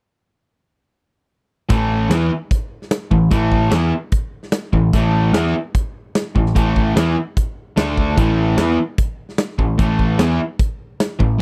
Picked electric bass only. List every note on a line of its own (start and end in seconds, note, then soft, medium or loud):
1.70 2.08 A1 medium
2.10 2.29 E2 medium
3.11 3.30 A1 medium
3.32 3.70 A1 medium
3.72 3.91 E2 medium
4.73 4.92 A1 medium
4.93 5.31 A1 medium
5.33 5.53 E2 medium
6.36 6.54 A1 medium
6.56 6.93 A1 medium
6.97 7.15 E2 medium
7.77 8.15 D2 medium
8.17 8.55 A1 medium
8.58 8.77 E2 medium
9.58 9.77 A1 medium
9.79 10.17 A1 medium
10.19 10.38 E2 medium
11.20 11.39 A1 medium